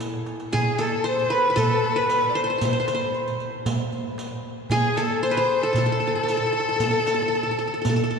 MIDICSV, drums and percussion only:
0, 0, Header, 1, 3, 480
1, 0, Start_track
1, 0, Tempo, 522648
1, 483, Time_signature, 4, 2, 24, 8
1, 7524, End_track
2, 0, Start_track
2, 0, Title_t, "Darbuka"
2, 8, Note_on_c, 9, 63, 59
2, 100, Note_off_c, 9, 63, 0
2, 125, Note_on_c, 9, 62, 57
2, 217, Note_off_c, 9, 62, 0
2, 242, Note_on_c, 9, 63, 65
2, 334, Note_off_c, 9, 63, 0
2, 369, Note_on_c, 9, 62, 68
2, 461, Note_off_c, 9, 62, 0
2, 493, Note_on_c, 9, 64, 75
2, 584, Note_off_c, 9, 64, 0
2, 728, Note_on_c, 9, 63, 65
2, 820, Note_off_c, 9, 63, 0
2, 967, Note_on_c, 9, 62, 30
2, 1059, Note_off_c, 9, 62, 0
2, 1441, Note_on_c, 9, 64, 80
2, 1533, Note_off_c, 9, 64, 0
2, 1565, Note_on_c, 9, 62, 31
2, 1657, Note_off_c, 9, 62, 0
2, 1804, Note_on_c, 9, 62, 28
2, 1896, Note_off_c, 9, 62, 0
2, 1925, Note_on_c, 9, 63, 70
2, 2017, Note_off_c, 9, 63, 0
2, 2045, Note_on_c, 9, 62, 25
2, 2137, Note_off_c, 9, 62, 0
2, 2401, Note_on_c, 9, 64, 77
2, 2493, Note_off_c, 9, 64, 0
2, 2642, Note_on_c, 9, 63, 64
2, 2733, Note_off_c, 9, 63, 0
2, 2880, Note_on_c, 9, 62, 26
2, 2972, Note_off_c, 9, 62, 0
2, 3122, Note_on_c, 9, 62, 25
2, 3214, Note_off_c, 9, 62, 0
2, 3359, Note_on_c, 9, 64, 77
2, 3451, Note_off_c, 9, 64, 0
2, 3480, Note_on_c, 9, 62, 25
2, 3571, Note_off_c, 9, 62, 0
2, 3600, Note_on_c, 9, 62, 20
2, 3692, Note_off_c, 9, 62, 0
2, 3725, Note_on_c, 9, 62, 24
2, 3817, Note_off_c, 9, 62, 0
2, 3839, Note_on_c, 9, 63, 67
2, 3930, Note_off_c, 9, 63, 0
2, 4076, Note_on_c, 9, 62, 20
2, 4168, Note_off_c, 9, 62, 0
2, 4313, Note_on_c, 9, 64, 76
2, 4405, Note_off_c, 9, 64, 0
2, 4548, Note_on_c, 9, 63, 60
2, 4640, Note_off_c, 9, 63, 0
2, 4793, Note_on_c, 9, 62, 25
2, 4885, Note_off_c, 9, 62, 0
2, 5275, Note_on_c, 9, 64, 75
2, 5366, Note_off_c, 9, 64, 0
2, 5399, Note_on_c, 9, 62, 27
2, 5491, Note_off_c, 9, 62, 0
2, 5638, Note_on_c, 9, 62, 26
2, 5730, Note_off_c, 9, 62, 0
2, 5757, Note_on_c, 9, 63, 67
2, 5849, Note_off_c, 9, 63, 0
2, 6241, Note_on_c, 9, 64, 77
2, 6333, Note_off_c, 9, 64, 0
2, 6361, Note_on_c, 9, 62, 28
2, 6453, Note_off_c, 9, 62, 0
2, 6485, Note_on_c, 9, 63, 61
2, 6577, Note_off_c, 9, 63, 0
2, 6727, Note_on_c, 9, 62, 28
2, 6819, Note_off_c, 9, 62, 0
2, 6845, Note_on_c, 9, 62, 26
2, 6937, Note_off_c, 9, 62, 0
2, 7211, Note_on_c, 9, 64, 81
2, 7303, Note_off_c, 9, 64, 0
2, 7332, Note_on_c, 9, 62, 27
2, 7424, Note_off_c, 9, 62, 0
2, 7451, Note_on_c, 9, 62, 25
2, 7524, Note_off_c, 9, 62, 0
2, 7524, End_track
3, 0, Start_track
3, 0, Title_t, "Riq"
3, 4, Note_on_c, 9, 54, 44
3, 96, Note_off_c, 9, 54, 0
3, 244, Note_on_c, 9, 54, 19
3, 336, Note_off_c, 9, 54, 0
3, 364, Note_on_c, 9, 54, 17
3, 456, Note_off_c, 9, 54, 0
3, 483, Note_on_c, 9, 54, 56
3, 574, Note_off_c, 9, 54, 0
3, 720, Note_on_c, 9, 54, 47
3, 812, Note_off_c, 9, 54, 0
3, 967, Note_on_c, 9, 54, 18
3, 1059, Note_off_c, 9, 54, 0
3, 1093, Note_on_c, 9, 54, 17
3, 1185, Note_off_c, 9, 54, 0
3, 1213, Note_on_c, 9, 54, 16
3, 1305, Note_off_c, 9, 54, 0
3, 1445, Note_on_c, 9, 54, 57
3, 1537, Note_off_c, 9, 54, 0
3, 1687, Note_on_c, 9, 54, 17
3, 1779, Note_off_c, 9, 54, 0
3, 1924, Note_on_c, 9, 54, 51
3, 2016, Note_off_c, 9, 54, 0
3, 2401, Note_on_c, 9, 54, 65
3, 2493, Note_off_c, 9, 54, 0
3, 2644, Note_on_c, 9, 54, 47
3, 2736, Note_off_c, 9, 54, 0
3, 2886, Note_on_c, 9, 54, 18
3, 2977, Note_off_c, 9, 54, 0
3, 3008, Note_on_c, 9, 54, 19
3, 3100, Note_off_c, 9, 54, 0
3, 3122, Note_on_c, 9, 54, 18
3, 3214, Note_off_c, 9, 54, 0
3, 3362, Note_on_c, 9, 54, 65
3, 3454, Note_off_c, 9, 54, 0
3, 3603, Note_on_c, 9, 54, 18
3, 3695, Note_off_c, 9, 54, 0
3, 3847, Note_on_c, 9, 54, 43
3, 3939, Note_off_c, 9, 54, 0
3, 4323, Note_on_c, 9, 54, 63
3, 4415, Note_off_c, 9, 54, 0
3, 4564, Note_on_c, 9, 54, 48
3, 4656, Note_off_c, 9, 54, 0
3, 4810, Note_on_c, 9, 54, 17
3, 4902, Note_off_c, 9, 54, 0
3, 4928, Note_on_c, 9, 54, 17
3, 5020, Note_off_c, 9, 54, 0
3, 5043, Note_on_c, 9, 54, 19
3, 5135, Note_off_c, 9, 54, 0
3, 5286, Note_on_c, 9, 54, 56
3, 5378, Note_off_c, 9, 54, 0
3, 5529, Note_on_c, 9, 54, 17
3, 5621, Note_off_c, 9, 54, 0
3, 5772, Note_on_c, 9, 54, 49
3, 5864, Note_off_c, 9, 54, 0
3, 6246, Note_on_c, 9, 54, 62
3, 6338, Note_off_c, 9, 54, 0
3, 6369, Note_on_c, 9, 54, 17
3, 6461, Note_off_c, 9, 54, 0
3, 6489, Note_on_c, 9, 54, 46
3, 6581, Note_off_c, 9, 54, 0
3, 6732, Note_on_c, 9, 54, 17
3, 6824, Note_off_c, 9, 54, 0
3, 6850, Note_on_c, 9, 54, 18
3, 6942, Note_off_c, 9, 54, 0
3, 6970, Note_on_c, 9, 54, 18
3, 7061, Note_off_c, 9, 54, 0
3, 7208, Note_on_c, 9, 54, 65
3, 7299, Note_off_c, 9, 54, 0
3, 7326, Note_on_c, 9, 54, 17
3, 7418, Note_off_c, 9, 54, 0
3, 7524, End_track
0, 0, End_of_file